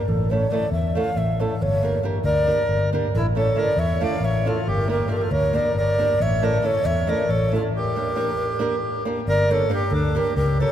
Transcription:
Already playing: A#4
0.08 A1 A4
0.31 A3 C#4 E4 A4 C#5
0.51 A3 C#4 E4 A4 D5
0.72 E2 E5
0.95 A3 C#4 E4 A4 F5
1.17 A1 E5
1.40 A3 C#4 E4 A4
1.62 G1 C#5
1.82 A#3 D4 G4 A#4
2.03 A#3 D4 G4 A#4
2.24 D2 A#4 D5
2.46 A#3 D4 G4 A#4
2.69 G1
2.93 A#3 D4 G4 A#4
3.14 A1 E4 A4
3.35 A3 C#4 E4 A4 C#5
3.55 A3 C#4 E4 A4 A#4
3.60 D5
3.77 E2 C#5 E5
4.00 A3 C#4 E4 A4 D5 F5
4.20 A1 C#5
4.25 E5
4.45 A3 C#4 E4 F4 A4
4.67 G1 G4 A#4
4.88 A#3 D4 G4 A#4
5.08 A#3 D4 F4 G4 A4 A#4
5.16 G4 A#4
5.21 F4 A4
5.31 D2 A#4 C#5
5.53 A#3 D4 G4 A#4 D5
5.75 G1 A#4 D5
5.99 A#3 D4 G4 A#4
6.20 A1 C#5 E5
6.42 A3 C#4 E4 A4 A#4 D5
6.62 A3 C#4 E4 A4 C#5
6.85 E2 C#5 E5
7.07 A3 C#4 E4 A4 A#4 D5
7.28 A1 A4 C#5
7.51 A3 C#4 E4 F4 A4
7.77 G4 A#4
7.96 A#3 D4 G4 A#4
8.16 A#3 D4 G4 A#4
8.59 A#3 D4 G4 A#4
9.05 A#3 D4 G4 A#4
9.27 G1 A#4 D5
9.50 A#3 D4 G4 A4 A#4 C#5
9.69 A#3 D4 G4 A#4
9.74 G4
9.91 D2 D4 A4
10.15 A#3 D4 G4 A#4
10.36 C#2 G4 A#4
10.60 A#3 D4 G4 A4 A#4 C#5

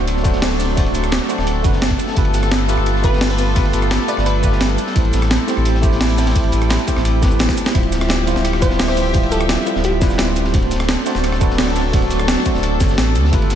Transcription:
Already playing: F#3 A3 C4 D4 F#4 A4 C5
0.00 D1
0.07 closed hi-hat, ride
0.17 snare
0.23 A3 D4 F#4 C5, kick, closed hi-hat, ride, shaker
0.33 snare
0.42 snare, closed hi-hat, open hi-hat
0.51 snare, closed hi-hat
0.60 snare, closed hi-hat, ride, shaker
0.76 D1 A3 D4 F#4 C5, kick, closed hi-hat, ride
0.86 ride
0.95 D1, closed hi-hat, ride, shaker
1.04 cross-stick, closed hi-hat, shaker
1.12 snare, closed hi-hat, ride
1.21 snare
1.29 A3 D4 F#4 C5, closed hi-hat, ride, shaker
1.38 D1, cross-stick, snare
1.47 closed hi-hat, ride
1.63 F#1 A3 D4 F#4 B4, kick, closed hi-hat, ride, shaker
1.73 snare
1.82 snare, closed hi-hat, ride
1.91 kick, closed hi-hat
1.99 closed hi-hat, ride, shaker
2.08 snare
2.15 G1 G3 A3 B3 F4 G4 B4, kick, closed hi-hat, ride
2.25 ride
2.34 snare, closed hi-hat, ride, shaker
2.43 cross-stick, snare, closed hi-hat, shaker
2.51 snare, closed hi-hat, ride
2.68 A3 F4 G4 B4, snare, closed hi-hat, ride, shaker
2.78 G1, cross-stick
2.86 closed hi-hat, ride
2.96 snare
3.02 A3 F4 G4 B4, kick, closed hi-hat, ride, shaker
3.13 snare
3.21 snare, closed hi-hat, open hi-hat
3.30 B4, snare, closed hi-hat
3.39 snare, closed hi-hat, ride, shaker
3.55 G1 A3 F4 G4 B4, kick, closed hi-hat, ride
3.65 ride
3.73 G1, closed hi-hat, ride, shaker
3.82 cross-stick, closed hi-hat, shaker
3.91 snare, closed hi-hat, ride
4.00 snare
4.08 A3 F4 G4 B4 D5, closed hi-hat, ride, shaker
4.17 G1, cross-stick, snare
4.26 B4, closed hi-hat, ride
4.43 A3 F4 G4 B4, kick, closed hi-hat, ride, shaker
4.52 snare
4.60 snare, closed hi-hat, ride
4.70 closed hi-hat
4.78 C4 E4, closed hi-hat, ride, shaker
4.87 snare
4.95 A1 A3 E4 G4 C5, kick, closed hi-hat, ride
5.05 ride
5.13 A1, snare, closed hi-hat, ride, shaker
5.22 cross-stick, snare, closed hi-hat, shaker
5.31 snare, closed hi-hat, ride
5.48 A3 E4 G4 C5, snare, closed hi-hat, ride, shaker
5.57 A1, cross-stick
5.65 closed hi-hat, ride
5.75 snare
5.82 A3 E4 G4 C5, kick, closed hi-hat, ride, shaker
5.92 snare
6.01 snare, closed hi-hat, open hi-hat
6.09 snare, closed hi-hat
6.18 snare, closed hi-hat, ride, shaker
6.26 snare, ride
6.34 A1 A3 E4 G4 C5, kick, closed hi-hat, ride
6.44 ride
6.52 A1, closed hi-hat, ride, shaker
6.62 cross-stick, closed hi-hat, shaker
6.70 snare, closed hi-hat, ride
6.79 snare, closed hi-hat
6.87 A3 E4 G4 C5, kick, closed hi-hat, ride, shaker
6.96 A1, cross-stick, snare
7.05 closed hi-hat, ride
7.21 A3 E4 G4 B4, kick, snare, closed hi-hat, ride, shaker
7.31 A1, shaker
7.39 snare, closed hi-hat, ride
7.49 kick, snare, closed hi-hat
7.58 closed hi-hat, ride, shaker
7.66 snare, closed hi-hat
7.73 D1 F3 G3 C4 E4 F4 G4 C5 E5, kick, closed hi-hat, ride
7.83 ride
7.92 snare, closed hi-hat, ride, shaker
8.01 cross-stick, snare, shaker
8.09 snare, closed hi-hat, ride
8.27 G3 E4 F4 C5, snare, closed hi-hat, ride, shaker
8.36 D1, snare
8.45 cross-stick, closed hi-hat, ride
8.53 cross-stick, snare
8.61 G3 E4 F4 B4 C5, kick, closed hi-hat, ride, shaker
8.70 snare
8.79 snare, closed hi-hat, open hi-hat
8.88 C5, cross-stick, snare
8.97 snare, closed hi-hat, ride, shaker
9.13 D1 G3 E4 F4 C5, kick, closed hi-hat, ride
9.23 ride
9.32 D1 A4, closed hi-hat, ride, shaker
9.41 cross-stick, shaker
9.49 snare, closed hi-hat, ride
9.58 snare
9.66 G3 E4 F4 C5, closed hi-hat, ride, shaker
9.76 D1, snare
9.84 G4, closed hi-hat, ride
10.00 G3 E4 F4 B4, kick, snare, closed hi-hat, ride, shaker
10.10 snare, shaker
10.18 snare, closed hi-hat, ride
10.36 closed hi-hat, ride, shaker
10.44 snare
10.52 D1 F#3 A3 D4 F#4 A4 C5, kick, closed hi-hat, ride
10.62 ride
10.71 D1, snare, closed hi-hat, ride, shaker
10.80 cross-stick, snare, shaker
10.89 snare, closed hi-hat, ride
11.06 A3 D4 F#4 C5, snare, closed hi-hat, ride, shaker
11.15 D1, snare
11.24 cross-stick, closed hi-hat, ride
11.32 cross-stick, snare
11.40 A3 D4 F#4 B4, kick, closed hi-hat, ride, shaker
11.50 snare
11.58 snare, closed hi-hat, open hi-hat
11.67 cross-stick, snare
11.76 snare, closed hi-hat, ride, shaker
11.92 D1 A3 D4 F#4 C5, kick, closed hi-hat, ride
12.02 ride
12.11 D1, closed hi-hat, ride, shaker
12.19 cross-stick, shaker
12.28 snare, closed hi-hat, ride
12.37 snare
12.45 A3 D4 F#4 C5, kick, closed hi-hat, ride, shaker
12.54 D1, snare
12.63 closed hi-hat, ride
12.80 F#1, kick, snare, closed hi-hat, ride, shaker
12.89 snare, shaker
12.98 A1, snare, closed hi-hat, ride
13.15 D2, closed hi-hat, ride, shaker
13.25 snare
13.32 G1 G3 A3 B3 F4 G4 B4, kick, closed hi-hat, ride
13.42 ride
13.50 snare, closed hi-hat, ride, shaker

